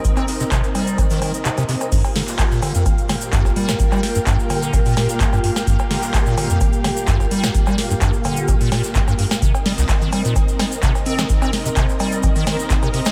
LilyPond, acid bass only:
\new Staff \with { instrumentName = "Acid bass" } { \clef bass \time 4/4 \key g \minor \tempo 4 = 128 r16 c'16 r16 c16 c16 r16 g8 ees16 ees16 ees16 r16 c16 c16 c16 r16 | g,16 r16 d16 r8 bes,16 d16 f,16 r8 d16 r16 g,16 g,,16 g16 g,16 | r16 g16 r16 g,16 g,16 r16 d8 bes,16 bes,16 bes,16 r16 g,16 g,16 g,16 r16 | g,16 r16 d16 r8 bes,16 d16 f,16 r8 d16 r16 g,16 g,,16 g16 g,16 |
r16 g16 r16 g,16 g,16 r16 d8 bes,16 bes,16 bes,16 r16 g,16 g,16 g,16 r16 | c16 r16 g16 c,16 r16 ees16 g16 bes,16 r8 g16 r16 c16 r16 c'16 c16 | r16 c'16 r16 c16 c16 r16 g8 ees16 ees16 ees16 r16 c16 c16 c16 r16 | }